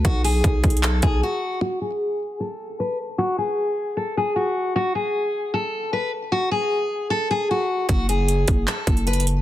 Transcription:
<<
  \new Staff \with { instrumentName = "Steel-string acoustic guitar" } { \time 4/4 \key fis \minor \tempo 4 = 153 fis'8 gis'4. a'8 gis'8 fis'4 | fis'8 gis'4. a'4 b'8 r8 | fis'8 gis'4. a'8 gis'8 fis'4 | fis'8 gis'4. a'4 b'8 r8 |
fis'8 gis'4. a'8 gis'8 fis'4 | fis'8 gis'4. a'4 b'8 r8 | }
  \new Staff \with { instrumentName = "808-style bass" } { \clef bass \time 4/4 \key fis \minor b,,4 b,,8 b,,4 b,,8 r4 | r1 | r1 | r1 |
r1 | fis,,4. fis,,8 r8 fis,,4. | }
  \new DrumStaff \with { instrumentName = "Drums" } \drummode { \time 4/4 <hh bd>8 hho8 \tuplet 3/2 { <hh bd>16 r16 r16 <hh bd>16 hh16 hh16 } <hc hh>8 <hh bd>8 r4 | r4 r4 r4 r4 | r4 r4 r4 r4 | r4 r4 r4 r4 |
r4 r4 r4 r4 | <hh bd>8 hh8 hh8 <hh bd>8 <hc hh>8 <hh bd>16 hh16 \tuplet 3/2 { hh16 hh16 hh16 hh16 r16 r16 } | }
>>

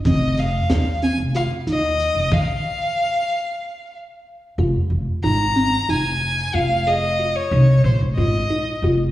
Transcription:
<<
  \new Staff \with { instrumentName = "Violin" } { \time 7/8 \key f \minor \tempo 4 = 92 ees''8 f''4 aes''8 f''8 ees''4 | f''2~ f''8 r4 | r4 bes''4 aes''4 f''8 | ees''8. des''8. c''8 ees''4 r8 | }
  \new Staff \with { instrumentName = "Synth arpeggio sound" } { \time 7/8 \key f \minor c'4 ees'8 c'8 f'8 ees'4 | r2. r8 | f'4 ees'8 c'8 ees'4 f'8 | aes'8 f'8 ees'4 f'8 ees'8 f'8 | }
  \new Staff \with { instrumentName = "Upright bass" } { \clef bass \time 7/8 \key f \minor f,,4 ees,8. f,,8 r16 ees,8. f,,16 | r2. r8 | f,,16 r16 f,,16 r16 aes,,4 f,,4 f,,8~ | f,,4 c,8 bes,,16 f,,16 aes,,8 r8 f,,8 | }
  \new DrumStaff \with { instrumentName = "Drums" } \drummode { \time 7/8 <hh bd>8 <hh sn>8 <hh sn>8 hh8 hh8 hh8 hh8 | <cymc bd>4 r4 r4. | r4 r4 r4. | r4 r4 r4. | }
>>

